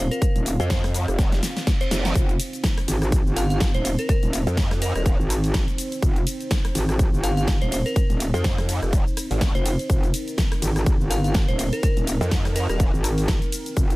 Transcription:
Already playing: analog synth pad C4 F4 F5
0.11 synth bell A#4, closed hi-hat, shaker
0.22 kick, closed hi-hat, shaker
0.36 wobble bass D#1, closed hi-hat, shaker
0.46 open hi-hat, shaker
0.60 wobble bass F2, synth bell C5, closed hi-hat, shaker
0.70 synth bell C5, kick, snare, closed hi-hat, shaker
0.84 cross-stick, snare, open hi-hat, shaker
0.94 open hi-hat, shaker
1.08 wobble bass F1, cross-stick, closed hi-hat, shaker
1.19 kick, snare, closed hi-hat, reverse cymbal, shaker
1.32 snare, closed hi-hat, shaker
1.43 snare, open hi-hat, shaker
1.57 snare, open hi-hat, shaker
1.67 kick, snare, closed hi-hat, shaker
1.81 synth bell C5, closed hi-hat, shaker
1.91 wobble bass F1, snare, open hi-hat, shaker
2.05 snare, closed hi-hat, shaker
2.15 wobble bass F1, analog synth pad D#4 C5, kick, closed hi-hat, shaker
2.29 closed hi-hat, shaker
2.40 open hi-hat, ride, shaker
2.53 closed hi-hat, shaker
2.64 kick, snare, closed hi-hat, shaker
2.78 cross-stick, open hi-hat, shaker
2.88 wobble bass G#1, open hi-hat, ride, shaker
3.02 cross-stick, closed hi-hat, shaker
3.12 kick, closed hi-hat, shaker
3.26 wobble bass G1, shaker
3.36 synth bell F5, cross-stick, open hi-hat, ride, shaker
3.50 synth bell F5, closed hi-hat, shaker
3.60 kick, snare, closed hi-hat, shaker
3.74 wobble bass D#1, synth bell C5, closed hi-hat, shaker
3.85 synth bell C5, open hi-hat, ride, shaker
3.99 synth bell A#4, closed hi-hat, shaker
4.09 synth bell A#4, kick, closed hi-hat, shaker
4.23 wobble bass D#1, closed hi-hat, shaker
4.33 open hi-hat, ride, shaker
4.47 wobble bass F2, closed hi-hat, shaker
4.57 kick, snare, closed hi-hat, shaker
4.71 cross-stick, snare, open hi-hat, shaker
4.82 synth bell A#4, open hi-hat, ride, shaker
4.95 wobble bass D#1, synth bell A#4, cross-stick, closed hi-hat, shaker
5.06 kick, closed hi-hat, shaker
5.20 wobble bass G#1, shaker
5.30 cross-stick, open hi-hat, ride, shaker
5.44 open hi-hat, shaker
5.54 kick, snare, closed hi-hat, shaker
5.68 closed hi-hat, shaker
5.78 open hi-hat, ride, shaker
5.92 closed hi-hat, shaker
6.02 wobble bass F1, kick, closed hi-hat, shaker
6.16 closed hi-hat, shaker
6.27 open hi-hat, ride, shaker
6.41 closed hi-hat, shaker
6.51 kick, snare, closed hi-hat, shaker
6.65 cross-stick, open hi-hat, shaker
6.75 wobble bass G#1, open hi-hat, ride, shaker
6.89 cross-stick, closed hi-hat, shaker
6.99 kick, closed hi-hat, shaker
7.13 wobble bass G1, shaker
7.24 synth bell F5, cross-stick, open hi-hat, ride, shaker
7.37 synth bell F5, closed hi-hat, shaker
7.48 kick, snare, closed hi-hat, shaker
7.61 wobble bass D#1, synth bell C5, closed hi-hat, shaker
7.72 synth bell C5, open hi-hat, ride, shaker
7.86 synth bell A#4, closed hi-hat, shaker
7.96 kick, closed hi-hat, shaker
8.10 wobble bass D#1, closed hi-hat, shaker
8.20 open hi-hat, ride, shaker
8.34 wobble bass F2, synth bell C5, closed hi-hat, shaker
8.44 synth bell C5, kick, snare, closed hi-hat, shaker
8.58 cross-stick, snare, open hi-hat, shaker
8.69 open hi-hat, ride, shaker
8.82 wobble bass F1, cross-stick, closed hi-hat, shaker
8.93 kick, closed hi-hat, shaker
9.07 shaker
9.17 cross-stick, open hi-hat, ride, shaker
9.31 wobble bass G#1, open hi-hat, shaker
9.41 kick, snare, closed hi-hat, shaker
9.55 wobble bass F1, synth bell C5, closed hi-hat, shaker
9.66 open hi-hat, ride, shaker
9.79 closed hi-hat, shaker
9.90 wobble bass F1, analog synth pad A#4, kick, closed hi-hat, shaker
10.03 closed hi-hat, shaker
10.14 open hi-hat, ride, shaker
10.28 closed hi-hat, shaker
10.38 kick, snare, closed hi-hat, shaker
10.52 cross-stick, open hi-hat, shaker
10.62 wobble bass G#1, open hi-hat, ride, shaker
10.76 cross-stick, closed hi-hat, shaker
10.86 kick, closed hi-hat, shaker
11.00 wobble bass G1, shaker
11.10 synth bell F5, cross-stick, open hi-hat, ride, shaker
11.24 synth bell F5, closed hi-hat, shaker
11.34 kick, snare, closed hi-hat, shaker
11.48 wobble bass D#1, synth bell C5, closed hi-hat, shaker
11.59 synth bell C5, open hi-hat, ride, shaker
11.73 synth bell A#4, closed hi-hat, shaker
11.83 synth bell A#4, kick, closed hi-hat, shaker
11.97 wobble bass D#1, closed hi-hat, shaker
12.07 open hi-hat, ride, shaker
12.21 wobble bass F2, closed hi-hat, shaker
12.31 kick, snare, closed hi-hat, shaker
12.45 cross-stick, snare, open hi-hat, shaker
12.56 synth bell A#4, open hi-hat, ride, shaker
12.69 wobble bass D#1, synth bell A#4, cross-stick, closed hi-hat, shaker
12.80 kick, closed hi-hat, shaker
12.94 wobble bass G#1, shaker
13.04 cross-stick, open hi-hat, ride, shaker
13.18 open hi-hat, shaker
13.28 kick, snare, closed hi-hat, shaker
13.42 closed hi-hat, shaker
13.52 open hi-hat, ride, shaker
13.66 closed hi-hat, shaker
13.77 wobble bass F1, kick, closed hi-hat, shaker
13.90 closed hi-hat, shaker

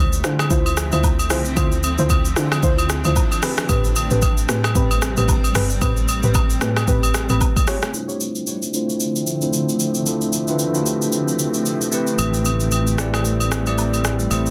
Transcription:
Already playing: log drum bass D2, ambient pad D3 F3 A3 C4 E5
0.13 shaker
0.24 log drum bass D3, synth stab E4 F4 C5, cross-stick, shaker
0.39 cross-stick, high agogo, shaker
0.50 log drum bass D2, synth stab E4 F4 C5, kick, shaker
0.66 high agogo, shaker
0.77 cross-stick, shaker
0.92 log drum bass D2, synth stab E4 F4 C5, high agogo, shaker
1.04 kick, low woodblock, shaker
1.19 high agogo, shaker
1.30 log drum bass C2, synth stab E4 F4 C5, cross-stick, open hi-hat, shaker
1.45 shaker
1.57 log drum bass D2, ambient pad D4, synth stab E4 F4 C5, kick, high agogo, shaker
1.72 shaker
1.83 high agogo, shaker
1.98 log drum bass D2, synth stab E4 F4 C5, shaker
2.10 kick, high agogo, shaker
2.25 shaker
2.36 log drum bass D3, synth stab E4 F4 C5, cross-stick, shaker
2.52 cross-stick, high agogo, shaker
2.63 log drum bass D2, synth stab E4 F4 C5, kick, shaker
2.78 high agogo, shaker
2.90 cross-stick, shaker
3.04 log drum bass D2, synth stab E4 F4 C5, high agogo, shaker
3.16 kick, low woodblock, shaker
3.32 high agogo, shaker
3.42 ambient pad G3 C4, synth stab C4 G4 B4, cross-stick, open hi-hat, shaker
3.57 cross-stick, shaker
3.69 log drum bass A1, synth stab C4 G4 B4, kick, high agogo, shaker
3.84 shaker
3.96 high agogo, shaker
4.11 log drum bass A1, synth stab C4 G4 B4, shaker
4.22 kick, high agogo, shaker
4.38 shaker
4.49 log drum bass A2, synth stab C4 G4 B4, cross-stick, shaker
4.64 cross-stick, high agogo, shaker
4.75 log drum bass A1, synth stab C4 G4 B4, kick, shaker
4.91 high agogo, shaker
5.02 cross-stick, shaker
5.17 log drum bass A1, synth stab C4 G4 B4, high agogo, shaker
5.28 kick, low woodblock, shaker
5.44 high agogo, shaker
5.55 log drum bass G1, synth stab C4 G4 B4, cross-stick, open hi-hat, shaker
5.70 shaker
5.81 log drum bass A1, synth stab C4 G4 B4, kick, high agogo, shaker
5.97 shaker
6.08 high agogo, shaker
6.23 log drum bass A1, synth stab C4 G4 B4, shaker
6.34 kick, high agogo, low woodblock, shaker
6.50 shaker
6.61 log drum bass A2, synth stab C4 G4 B4, cross-stick, shaker
6.76 cross-stick, high agogo, shaker
6.87 log drum bass A1, synth stab C4 G4 B4, kick, shaker
7.03 high agogo, shaker
7.14 cross-stick, shaker
7.29 log drum bass A1, synth stab C4 G4 B4, high agogo, shaker
7.41 kick, low woodblock, shaker
7.56 kick, high agogo, shaker
7.67 synth stab F4 G4 C#5, cross-stick, open hi-hat, shaker
7.82 cross-stick, shaker
7.93 ambient pad D3 F3 A3 C4 E5, tine electric piano A3 D4 E4 F4 C5, shaker
8.09 shaker
8.21 shaker
8.35 shaker
8.47 shaker
8.62 shaker
8.73 tine electric piano A3 D4 E4 F4 C5, shaker
8.89 shaker
9.00 shaker
9.16 shaker
9.27 shaker
9.41 tine electric piano A3 D4 E4 F4 C5, shaker
9.53 shaker
9.69 shaker
9.80 shaker
9.95 shaker
10.06 tine electric piano A3 D4 E4 F4 A4, shaker
10.21 shaker
10.33 shaker
10.48 tine electric piano A3 D4 E4 F4 B4, shaker
10.59 shaker
10.74 tine electric piano A3 D4 E4 F4 F#4, shaker
10.83 tine electric piano G4, shaker
11.02 shaker
11.12 shaker
11.28 shaker
11.39 shaker
11.54 shaker
11.66 shaker
11.81 shaker
11.92 ambient pad G3, tine electric piano A3 C4 E4 G4 B4, shaker
12.07 shaker
12.19 fingered electric bass A1, high agogo, shaker
12.34 shaker
12.45 high agogo, shaker
12.60 shaker
12.72 high agogo, shaker
12.87 shaker
12.98 tine electric piano A3 C4 E4 G4 D5, cross-stick, shaker
13.14 cross-stick, high agogo, shaker
13.25 shaker
13.40 high agogo, shaker
13.52 cross-stick, shaker
13.66 tine electric piano A3 C4 E4 G4 D5, high agogo, shaker
13.78 low woodblock, shaker
13.94 high agogo, shaker
14.05 cross-stick, shaker
14.19 shaker
14.31 fingered electric bass A1, tine electric piano A3 C4 E4 G4 C5, high agogo, shaker
14.46 shaker

